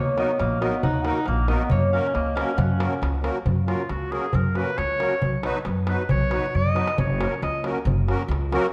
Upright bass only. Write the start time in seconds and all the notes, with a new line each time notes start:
Already playing: D#2
0.40 A#1
0.83 D#2
1.28 A#1
1.71 F#2
2.15 C#2
2.58 F#2
3.02 C#2
3.46 F#2
3.89 C#2
4.34 F#2
4.78 C#2
5.22 B1
5.66 F#2
6.10 B1
6.55 F#2
6.98 F#1
7.42 C#2
7.85 F#1
8.28 C#2